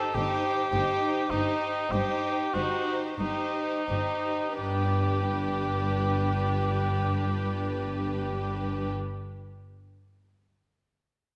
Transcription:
0, 0, Header, 1, 7, 480
1, 0, Start_track
1, 0, Key_signature, 1, "major"
1, 0, Tempo, 1121495
1, 309, Tempo, 1195219
1, 789, Tempo, 1273885
1, 1269, Tempo, 1376147
1, 1749, Time_signature, 4, 2, 24, 8
1, 1749, Tempo, 1301518
1, 4252, End_track
2, 0, Start_track
2, 0, Title_t, "Violin section"
2, 0, Program_c, 0, 48
2, 0, Note_on_c, 0, 72, 42
2, 61, Note_off_c, 0, 72, 0
2, 66, Note_on_c, 0, 72, 42
2, 304, Note_off_c, 0, 72, 0
2, 311, Note_on_c, 0, 72, 38
2, 537, Note_off_c, 0, 72, 0
2, 542, Note_on_c, 0, 72, 35
2, 779, Note_off_c, 0, 72, 0
2, 784, Note_on_c, 0, 72, 38
2, 1017, Note_off_c, 0, 72, 0
2, 1025, Note_on_c, 0, 72, 33
2, 1265, Note_off_c, 0, 72, 0
2, 1275, Note_on_c, 0, 72, 29
2, 1510, Note_off_c, 0, 72, 0
2, 1515, Note_on_c, 0, 72, 27
2, 1746, Note_off_c, 0, 72, 0
2, 1748, Note_on_c, 0, 71, 30
2, 3351, Note_off_c, 0, 71, 0
2, 4252, End_track
3, 0, Start_track
3, 0, Title_t, "Cor anglais"
3, 0, Program_c, 1, 69
3, 0, Note_on_c, 1, 69, 63
3, 61, Note_on_c, 1, 67, 62
3, 67, Note_off_c, 1, 69, 0
3, 543, Note_on_c, 1, 63, 48
3, 549, Note_off_c, 1, 67, 0
3, 789, Note_on_c, 1, 67, 51
3, 795, Note_off_c, 1, 63, 0
3, 1024, Note_on_c, 1, 66, 50
3, 1029, Note_off_c, 1, 67, 0
3, 1202, Note_off_c, 1, 66, 0
3, 1266, Note_on_c, 1, 63, 45
3, 1738, Note_off_c, 1, 63, 0
3, 1744, Note_on_c, 1, 67, 38
3, 3347, Note_off_c, 1, 67, 0
3, 4252, End_track
4, 0, Start_track
4, 0, Title_t, "Violin section"
4, 0, Program_c, 2, 48
4, 0, Note_on_c, 2, 67, 45
4, 54, Note_off_c, 2, 67, 0
4, 59, Note_on_c, 2, 67, 38
4, 295, Note_off_c, 2, 67, 0
4, 300, Note_on_c, 2, 67, 37
4, 533, Note_off_c, 2, 67, 0
4, 538, Note_on_c, 2, 67, 36
4, 778, Note_off_c, 2, 67, 0
4, 783, Note_on_c, 2, 67, 34
4, 1014, Note_off_c, 2, 67, 0
4, 1019, Note_on_c, 2, 67, 28
4, 1260, Note_off_c, 2, 67, 0
4, 1265, Note_on_c, 2, 67, 31
4, 1505, Note_off_c, 2, 67, 0
4, 1509, Note_on_c, 2, 67, 25
4, 1742, Note_off_c, 2, 67, 0
4, 1746, Note_on_c, 2, 67, 29
4, 3349, Note_off_c, 2, 67, 0
4, 4252, End_track
5, 0, Start_track
5, 0, Title_t, "Viola section"
5, 0, Program_c, 3, 48
5, 0, Note_on_c, 3, 63, 42
5, 66, Note_off_c, 3, 63, 0
5, 76, Note_on_c, 3, 63, 35
5, 308, Note_off_c, 3, 63, 0
5, 317, Note_on_c, 3, 63, 39
5, 545, Note_off_c, 3, 63, 0
5, 553, Note_on_c, 3, 63, 35
5, 789, Note_off_c, 3, 63, 0
5, 793, Note_on_c, 3, 63, 38
5, 1022, Note_off_c, 3, 63, 0
5, 1029, Note_on_c, 3, 63, 32
5, 1267, Note_off_c, 3, 63, 0
5, 1274, Note_on_c, 3, 63, 29
5, 1509, Note_off_c, 3, 63, 0
5, 1520, Note_on_c, 3, 63, 29
5, 1748, Note_off_c, 3, 63, 0
5, 1759, Note_on_c, 3, 62, 29
5, 3361, Note_off_c, 3, 62, 0
5, 4252, End_track
6, 0, Start_track
6, 0, Title_t, "Cello section"
6, 0, Program_c, 4, 48
6, 67, Note_on_c, 4, 43, 41
6, 102, Note_off_c, 4, 43, 0
6, 311, Note_on_c, 4, 43, 41
6, 343, Note_off_c, 4, 43, 0
6, 547, Note_on_c, 4, 43, 39
6, 579, Note_off_c, 4, 43, 0
6, 791, Note_on_c, 4, 43, 39
6, 821, Note_off_c, 4, 43, 0
6, 1023, Note_on_c, 4, 43, 35
6, 1053, Note_off_c, 4, 43, 0
6, 1267, Note_on_c, 4, 43, 31
6, 1295, Note_off_c, 4, 43, 0
6, 1510, Note_on_c, 4, 43, 26
6, 1538, Note_off_c, 4, 43, 0
6, 1750, Note_on_c, 4, 43, 29
6, 3353, Note_off_c, 4, 43, 0
6, 4252, End_track
7, 0, Start_track
7, 0, Title_t, "Double bass section"
7, 0, Program_c, 5, 48
7, 68, Note_on_c, 5, 31, 39
7, 102, Note_off_c, 5, 31, 0
7, 312, Note_on_c, 5, 31, 39
7, 344, Note_off_c, 5, 31, 0
7, 544, Note_on_c, 5, 31, 34
7, 576, Note_off_c, 5, 31, 0
7, 787, Note_on_c, 5, 31, 38
7, 817, Note_off_c, 5, 31, 0
7, 1025, Note_on_c, 5, 31, 34
7, 1055, Note_off_c, 5, 31, 0
7, 1270, Note_on_c, 5, 31, 31
7, 1297, Note_off_c, 5, 31, 0
7, 1512, Note_on_c, 5, 31, 28
7, 1540, Note_off_c, 5, 31, 0
7, 1748, Note_on_c, 5, 31, 30
7, 3351, Note_off_c, 5, 31, 0
7, 4252, End_track
0, 0, End_of_file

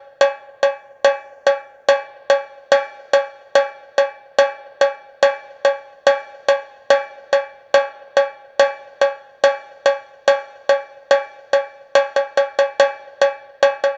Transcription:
0, 0, Header, 1, 2, 480
1, 0, Start_track
1, 0, Tempo, 419580
1, 1198, Time_signature, 4, 2, 24, 8
1, 15989, End_track
2, 0, Start_track
2, 0, Title_t, "Drums"
2, 241, Note_on_c, 9, 56, 83
2, 355, Note_off_c, 9, 56, 0
2, 720, Note_on_c, 9, 56, 69
2, 834, Note_off_c, 9, 56, 0
2, 1196, Note_on_c, 9, 56, 91
2, 1310, Note_off_c, 9, 56, 0
2, 1678, Note_on_c, 9, 56, 76
2, 1792, Note_off_c, 9, 56, 0
2, 2157, Note_on_c, 9, 56, 93
2, 2272, Note_off_c, 9, 56, 0
2, 2630, Note_on_c, 9, 56, 80
2, 2744, Note_off_c, 9, 56, 0
2, 3109, Note_on_c, 9, 56, 113
2, 3224, Note_off_c, 9, 56, 0
2, 3585, Note_on_c, 9, 56, 86
2, 3700, Note_off_c, 9, 56, 0
2, 4065, Note_on_c, 9, 56, 92
2, 4180, Note_off_c, 9, 56, 0
2, 4553, Note_on_c, 9, 56, 73
2, 4667, Note_off_c, 9, 56, 0
2, 5017, Note_on_c, 9, 56, 100
2, 5131, Note_off_c, 9, 56, 0
2, 5505, Note_on_c, 9, 56, 77
2, 5619, Note_off_c, 9, 56, 0
2, 5980, Note_on_c, 9, 56, 100
2, 6094, Note_off_c, 9, 56, 0
2, 6462, Note_on_c, 9, 56, 77
2, 6576, Note_off_c, 9, 56, 0
2, 6941, Note_on_c, 9, 56, 110
2, 7055, Note_off_c, 9, 56, 0
2, 7419, Note_on_c, 9, 56, 82
2, 7533, Note_off_c, 9, 56, 0
2, 7897, Note_on_c, 9, 56, 104
2, 8012, Note_off_c, 9, 56, 0
2, 8383, Note_on_c, 9, 56, 80
2, 8498, Note_off_c, 9, 56, 0
2, 8856, Note_on_c, 9, 56, 105
2, 8971, Note_off_c, 9, 56, 0
2, 9344, Note_on_c, 9, 56, 83
2, 9458, Note_off_c, 9, 56, 0
2, 9833, Note_on_c, 9, 56, 99
2, 9947, Note_off_c, 9, 56, 0
2, 10312, Note_on_c, 9, 56, 80
2, 10427, Note_off_c, 9, 56, 0
2, 10796, Note_on_c, 9, 56, 101
2, 10910, Note_off_c, 9, 56, 0
2, 11278, Note_on_c, 9, 56, 78
2, 11392, Note_off_c, 9, 56, 0
2, 11757, Note_on_c, 9, 56, 94
2, 11872, Note_off_c, 9, 56, 0
2, 12232, Note_on_c, 9, 56, 78
2, 12347, Note_off_c, 9, 56, 0
2, 12710, Note_on_c, 9, 56, 88
2, 12824, Note_off_c, 9, 56, 0
2, 13193, Note_on_c, 9, 56, 68
2, 13307, Note_off_c, 9, 56, 0
2, 13674, Note_on_c, 9, 56, 87
2, 13788, Note_off_c, 9, 56, 0
2, 13914, Note_on_c, 9, 56, 64
2, 14028, Note_off_c, 9, 56, 0
2, 14155, Note_on_c, 9, 56, 69
2, 14270, Note_off_c, 9, 56, 0
2, 14400, Note_on_c, 9, 56, 67
2, 14514, Note_off_c, 9, 56, 0
2, 14640, Note_on_c, 9, 56, 94
2, 14754, Note_off_c, 9, 56, 0
2, 15118, Note_on_c, 9, 56, 76
2, 15233, Note_off_c, 9, 56, 0
2, 15589, Note_on_c, 9, 56, 91
2, 15704, Note_off_c, 9, 56, 0
2, 15830, Note_on_c, 9, 56, 65
2, 15944, Note_off_c, 9, 56, 0
2, 15989, End_track
0, 0, End_of_file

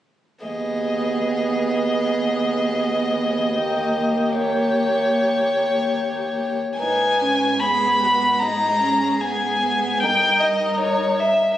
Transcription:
0, 0, Header, 1, 5, 480
1, 0, Start_track
1, 0, Key_signature, 5, "minor"
1, 0, Tempo, 811908
1, 271, Time_signature, 4, 2, 24, 8
1, 749, Tempo, 768246
1, 3149, Tempo, 833333
1, 4589, Tempo, 800000
1, 6970, End_track
2, 0, Start_track
2, 0, Title_t, "Violin"
2, 0, Program_c, 0, 40
2, 275, Note_on_c, 0, 75, 34
2, 2656, Note_on_c, 0, 73, 52
2, 2665, Note_off_c, 0, 75, 0
2, 3998, Note_off_c, 0, 73, 0
2, 4119, Note_on_c, 0, 80, 53
2, 4582, Note_on_c, 0, 83, 57
2, 4591, Note_off_c, 0, 80, 0
2, 5061, Note_on_c, 0, 82, 55
2, 5070, Note_off_c, 0, 83, 0
2, 5547, Note_on_c, 0, 80, 44
2, 5556, Note_off_c, 0, 82, 0
2, 6024, Note_on_c, 0, 79, 55
2, 6033, Note_off_c, 0, 80, 0
2, 6264, Note_on_c, 0, 75, 53
2, 6273, Note_off_c, 0, 79, 0
2, 6503, Note_off_c, 0, 75, 0
2, 6506, Note_on_c, 0, 73, 49
2, 6742, Note_on_c, 0, 76, 53
2, 6751, Note_off_c, 0, 73, 0
2, 6940, Note_off_c, 0, 76, 0
2, 6943, Note_on_c, 0, 76, 27
2, 6970, Note_off_c, 0, 76, 0
2, 6970, End_track
3, 0, Start_track
3, 0, Title_t, "Violin"
3, 0, Program_c, 1, 40
3, 267, Note_on_c, 1, 68, 36
3, 2177, Note_on_c, 1, 67, 42
3, 2186, Note_off_c, 1, 68, 0
3, 3997, Note_off_c, 1, 67, 0
3, 4124, Note_on_c, 1, 71, 34
3, 4569, Note_off_c, 1, 71, 0
3, 4600, Note_on_c, 1, 68, 39
3, 4841, Note_on_c, 1, 66, 36
3, 4850, Note_off_c, 1, 68, 0
3, 5075, Note_on_c, 1, 68, 40
3, 5084, Note_off_c, 1, 66, 0
3, 6047, Note_on_c, 1, 70, 44
3, 6056, Note_off_c, 1, 68, 0
3, 6970, Note_off_c, 1, 70, 0
3, 6970, End_track
4, 0, Start_track
4, 0, Title_t, "Viola"
4, 0, Program_c, 2, 41
4, 273, Note_on_c, 2, 59, 35
4, 2188, Note_on_c, 2, 58, 44
4, 2197, Note_off_c, 2, 59, 0
4, 4002, Note_off_c, 2, 58, 0
4, 4125, Note_on_c, 2, 63, 35
4, 4362, Note_on_c, 2, 61, 34
4, 4371, Note_off_c, 2, 63, 0
4, 4594, Note_on_c, 2, 59, 40
4, 4603, Note_off_c, 2, 61, 0
4, 5074, Note_on_c, 2, 63, 40
4, 5083, Note_off_c, 2, 59, 0
4, 5309, Note_off_c, 2, 63, 0
4, 5313, Note_on_c, 2, 61, 39
4, 5548, Note_off_c, 2, 61, 0
4, 5559, Note_on_c, 2, 59, 34
4, 5790, Note_off_c, 2, 59, 0
4, 5798, Note_on_c, 2, 59, 42
4, 6043, Note_on_c, 2, 63, 46
4, 6052, Note_off_c, 2, 59, 0
4, 6970, Note_off_c, 2, 63, 0
4, 6970, End_track
5, 0, Start_track
5, 0, Title_t, "Cello"
5, 0, Program_c, 3, 42
5, 270, Note_on_c, 3, 39, 36
5, 3975, Note_off_c, 3, 39, 0
5, 4121, Note_on_c, 3, 44, 38
5, 6029, Note_on_c, 3, 43, 39
5, 6038, Note_off_c, 3, 44, 0
5, 6970, Note_off_c, 3, 43, 0
5, 6970, End_track
0, 0, End_of_file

